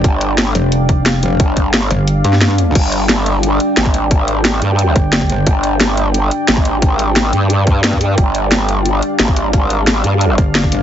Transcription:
<<
  \new Staff \with { instrumentName = "Ambient pad" } { \time 4/4 \key c \minor \tempo 4 = 177 << { f''1~ | f''1 | g''1~ | g''1~ |
g''1~ | g''1 | f''1~ | f''1 | } \\ { <g d' d''>1~ | <g d' d''>1 | <g d' d''>1~ | <g d' d''>1~ |
<g d' d''>1~ | <g d' d''>1~ | <g d' d''>1~ | <g d' d''>1 | } >> }
  \new Staff \with { instrumentName = "Wobble bass" } { \clef bass \time 4/4 \key c \minor g,,4. r2 r8 | g,,4. r2 r8 | g,,2~ g,,8 r8 aes,,4~ | aes,,4. g,4 r4. |
g,,2~ g,,8 r8 aes,,4~ | aes,,4. g,2~ g,8 | g,,2~ g,,8 r8 aes,,4~ | aes,,4. g,4 r4. | }
  \new Staff \with { instrumentName = "Wobble bass" } { \clef bass \time 4/4 \key c \minor r4. f,,2~ f,,8 | r4. g,,4 g,4. | r1 | r2 r8 g,,4. |
r1 | r1 | r1 | r2 r8 g,,4. | }
  \new DrumStaff \with { instrumentName = "Drums" } \drummode { \time 4/4 <hh bd>8 hh8 <hh sn>8 hh8 hh8 <hh bd>8 <hh sn>8 hh8 | <hh bd>8 <hh bd>8 <hh sn>8 hh8 hh8 hh16 sn16 <hh sn>8 hh8 | <cymc hh bd>8 hh8 <hh sn>8 hh8 hh8 hh8 <hh sn>16 bd16 hh8 | <hh bd>8 hh8 <hh sn>8 hh8 hh8 <hh bd>8 <hh sn>16 bd16 hh8 |
<hh bd>8 hh8 <hh sn>8 hh8 hh8 hh8 <hh sn>16 bd16 hh8 | <hh bd>8 hh8 <hh sn>8 hh8 hh8 <hh bd>8 <hh sn>16 bd16 hh8 | <hh bd>8 hh8 <hh sn>8 hh8 hh8 hh8 <hh sn>16 bd16 hh8 | <hh bd>8 hh8 <hh sn>8 hh8 hh8 <hh bd>8 <hh sn>16 bd16 hh8 | }
>>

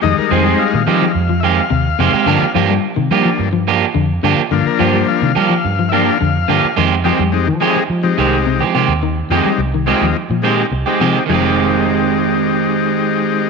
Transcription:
<<
  \new Staff \with { instrumentName = "Transistor combo organ" } { \time 4/4 \key f \dorian \tempo 4 = 106 ees''16 bes'16 c''8 f''4. <e'' f''>4.~ | <e'' f''>8 r2. r8 | f''16 bes'16 c''8 f''4. <e'' f''>4. | r8 <aes c' ees' g'>16 r16 <aes c' ees' g'>16 r16 <aes c' ees' aes'>8 r16 <aes c' ees' g'>4 r8. |
r8 <aes c' ees' g'>8 r8 <aes c' ees' f'>8 r8 <aes c' ees' g'>8 r16 <aes c' ees' g'>8. | <aes c' ees' g'>1 | }
  \new Staff \with { instrumentName = "Transistor combo organ" } { \time 4/4 \key f \dorian <g aes ees'>4. <g aes ees'>8 r2 | r4. <f bes d'>8 r2 | <f bes d'>4. r4 <f bes d'>8 r4 | r1 |
r1 | r1 | }
  \new Staff \with { instrumentName = "Clean electric guitar" } { \time 4/4 \key f \dorian r8 <ees aes c'>16 <aes c'>16 r8 <ees aes c' g'>16 r8. <ees aes c' g'>16 r8. <ees aes c' g'>16 <aes c' g'>16 | <f bes d' g'>16 r16 <f bes d' g'>16 r8. <f bes g'>16 r8. <f bes d' g'>16 r8. <f bes d' g'>16 r16 | r8 <f bes d' g'>16 r8. <f bes d' g'>16 r8. <f bes d' g'>16 r8. <f bes d' g'>16 r16 | <ees aes c' g'>16 r16 <ees aes c' g'>16 r8. <ees aes c' g'>16 r8. <ees aes c' g'>16 r8 <aes c' g'>16 <ees aes c' g'>16 r16 |
r8 <ees aes c' g'>16 r8. <ees aes c' g'>16 r8. <ees aes c' g'>16 r8 <aes c' g'>16 <ees aes c' g'>16 r16 | <ees aes c' g'>1 | }
  \new Staff \with { instrumentName = "Clean electric guitar" } { \clef bass \time 4/4 \key f \dorian ees8 f16 r8 ees8 f8 f8 r16 c8 c8 | d8 f16 g8 ees8 f8 f8 r16 d8 d8 | d8 f16 g8 ees8 f8 f8 r16 d8 d8 | ees8 f16 g8 ees8 r8 f8 r16 c8 c8 |
ees8 f16 g8 ees8 f8 f8 r8. c8 | f8 r2. r8 | }
  \new Staff \with { instrumentName = "Fingered electric bass" } { \clef bass \time 4/4 \key f \dorian f,16 r16 f,8 r16 bes,16 f16 r16 f,4 ees,8 f,16 r16 | g,16 r16 g,8 r16 c16 g16 r16 g,4 f,8 g,16 r16 | g,16 r16 g,8 r16 c16 g16 r16 g,4 f,8 g,16 r16 | f,8. f,8 f8. f8 c,8. f8 ees,16~ |
ees,8 f,16 r16 c,8. ees,16 r16 bes,8. c,16 r16 f16 r16 | f,,1 | }
>>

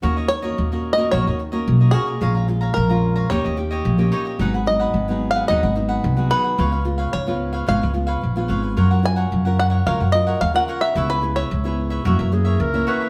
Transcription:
<<
  \new Staff \with { instrumentName = "Five-string banjo" } { \time 4/4 \key ees \minor \tempo 4 = 110 r8 des''8~ \tuplet 3/2 { des''4 ees''8 } des''4. aes'8~ | aes'4 bes'4 des''4. r8 | r8 ees''8~ \tuplet 3/2 { ees''4 f''8 } ees''4. ces''8~ | ces''4 des''4 f''4. r8 |
r8 aes''4 ges''8 f''8 ees''8 f''16 ges''8 fes''16~ | fes''16 ces''8 des''4. r4. r16 | }
  \new Staff \with { instrumentName = "Cavaquinho" } { \time 4/4 \key ees \minor <ges' bes' des'' ees''>16 <bes' des'' ees''>16 r16 <bes' des'' ees''>8 <bes' des'' ees''>8 <bes' des'' ees''>16 <ges' bes' des'' ees''>16 <bes' des'' ees''>16 r16 <bes' des'' ees''>8 <bes' des'' ees''>16 <ges' bes' des'' ees''>16 <bes' des'' ees''>16 | <aes' des'' f'' bes''>16 <des'' f'' bes''>16 r16 <des'' f'' bes''>8 <des'' f'' bes''>8 <des'' f'' bes''>16 <ees' g' des'' ees''>16 <g' des'' ees''>16 r16 <g' des'' ees''>8 <g' des'' ees''>16 <ees' g' des'' ees''>16 <g' des'' ees''>16 | <ees' aes' ces'' ges''>16 <aes' ces'' ges''>16 r16 <aes' ces'' ges''>8 <aes' ces'' ges''>8 <aes' ces'' ges''>16 <ees' aes' ces'' ges''>16 <aes' ces'' ges''>16 r16 <aes' ces'' ges''>8 <aes' ces'' ges''>16 <ees' aes' ces'' ges''>16 <aes' ces'' ges''>16 | <f' ces'' des'' f''>16 <ces'' des'' f''>16 r16 <ces'' des'' f''>8 <ces'' des'' f''>8 <ces'' des'' f''>16 <f' ces'' des'' f''>16 <ces'' des'' f''>16 r16 <ces'' des'' f''>8 <ces'' des'' f''>16 <f' ces'' des'' f''>16 <ces'' des'' f''>16 |
<f' bes' des'' ges''>16 <bes' des'' ges''>16 r16 <bes' des'' ges''>8 <bes' des'' ges''>8 <bes' des'' ges''>16 <f' bes' des'' ges''>16 <bes' des'' ges''>16 r16 <bes' des'' ges''>8 <bes' des'' ges''>16 <f' bes' des'' ges''>16 <bes' des'' ges''>16 | <fes' ces'' des'' fes''>16 <ces'' des'' fes''>16 r16 <ces'' des'' fes''>8 <ces'' des'' fes''>8 <ces'' des'' fes''>16 <ges' bes' des'' fes''>16 <bes' des'' fes''>16 r16 <bes' des'' fes''>8 <bes' des'' fes''>16 <ges' bes' des'' fes''>16 <bes' des'' fes''>16 | }
  \new Staff \with { instrumentName = "Clarinet" } { \time 4/4 \key ees \minor r1 | r1 | r1 | r1 |
r1 | r2 ges'8 aes'8 bes'8 ces''8 | }
  \new Staff \with { instrumentName = "Nylon-string guitar" } { \time 4/4 \key ees \minor << { <bes des' ges'>8 r16 <bes des' ges'>8 <bes des' ges'>8 <bes des' ges'>16 <bes des' ges'>8 r16 <bes des' ges'>8. <bes des' ges'>16 r16 | <aes des' f'>8 <aes des' f'>8. <aes des' f'>8. <bes des' g'>8 <bes des' g'>8. <bes des' g'>8. | <ges ces' ees'>16 r16 <ges ces' ees'>8 r16 <ges ces' ees'>8. <ges ces' ees'>16 r16 <ges ces' ees'>8. <ges ces' ees'>8. | <aes ces' f'>16 r16 <aes ces' f'>8 r16 <aes ces' f'>8. <aes ces' f'>8 <aes ces' f'>8 r16 <aes ces' f'>8. |
<des' f' bes'>8 <des' f' bes'>8. <des' f' bes'>8. <des' f' bes'>16 r16 <des' f' bes'>8 r16 <des' f' bes'>8. | <ces' fes' aes'>8 <ces' fes' aes'>8 r16 <ces' fes' aes'>8. <fes bes des'>8 <fes bes des'>8. <fes bes des'>8. | } \\ { ees4 bes,4 ees4 bes,4 | bes,4 f,4 ees4 bes,4 | aes,4 ees4 aes,4 ees4 | des4 aes,4 des4 aes,4 |
ges4 des4 ges4 des4 | des4 aes,4 ges,4 des4 | } >> }
  \new Staff \with { instrumentName = "Upright bass" } { \clef bass \time 4/4 \key ees \minor ees,4 ees,4 bes,,16 ees,8. ces,8 r8 | bes,,4 bes,,4 ees,16 ees,8. bes,,8 r8 | aes,,4 aes,,4 ees,16 aes,,8. c,8 r8 | des,4 des,4 aes,,16 des,8. bes,,8 aes,,8 |
ges,4 ges,4 des,16 ges,8. ees,8 r8 | des,4 des,4 ges,16 ges,8. des,8 r8 | }
>>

